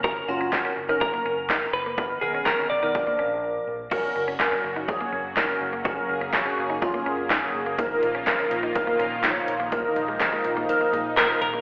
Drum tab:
CC |--------|--------|x-------|--------|
HH |--------|--------|--------|--------|
CP |--x---x-|--x-----|--x---x-|--x---x-|
SD |--o---o-|--o-----|--o---o-|--o---o-|
BD |o-o-o-o-|o-o-o---|o-o-o-o-|o-o-o-o-|

CC |--------|--------|
HH |xxxxxxxx|xxxxxxxx|
CP |--x---x-|--x---x-|
SD |--o---o-|--o---o-|
BD |o-o-o-o-|o-o-----|